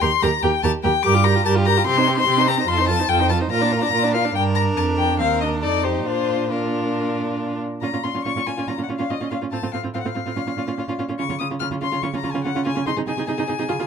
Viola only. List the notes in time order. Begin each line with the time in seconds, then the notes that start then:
0.02 G4
0.22 G4
0.44 G4
0.64 G4
0.85 G4
1.05 G4
1.14 F4
1.25 G4
1.36 F4
1.46 G4
1.56 F4
1.66 G4
1.77 F4
1.87 C4
1.98 D#4
2.08 C4
2.17 D#4
2.28 C4
2.38 D#4
2.48 C4
2.58 D#4
2.68 F4
2.79 D#4
2.88 F4
2.99 D#4
3.10 F4
3.20 D#4
3.30 F4
3.41 D#4
3.52 F4
3.62 D4
3.73 F4
3.82 D4
3.93 F4
4.04 D4
4.15 F4
4.25 D4
4.36 D4
5.21 C4
5.42 D4
5.64 D#4
6.07 D4
6.52 D4
7.83 C#4
7.93 C#4
8.04 C#4
8.16 C#4
8.26 C#4
8.36 C#4
8.48 C#4
8.59 C#4
8.69 C#4
8.79 C#4
8.90 C#4
9.00 C#4
9.11 C#4
9.22 C#4
9.32 C#4
9.43 C#4
9.53 C4
9.63 C4
9.74 C4
9.84 C4
9.95 C4
10.06 C4
10.16 C4
10.27 C4
10.36 C#4
10.47 C#4
10.57 C#4
10.68 C#4
10.78 C#4
10.88 C#4
11.00 C#4
11.09 C#4
11.19 C#4
11.30 C#4
11.41 C#4
11.51 C#4
11.62 C#4
11.73 C#4
11.83 C#4
11.93 C#4
12.04 C#4
12.14 C#4
12.24 C#4
12.35 C#4
12.46 C#4
12.56 C#4
12.67 C#4
12.77 C#4
12.87 D#4
12.98 D#4
13.08 D#4
13.19 D#4
13.28 D#4
13.39 D#4
13.49 D#4
13.59 D#4
13.69 F4
13.79 F4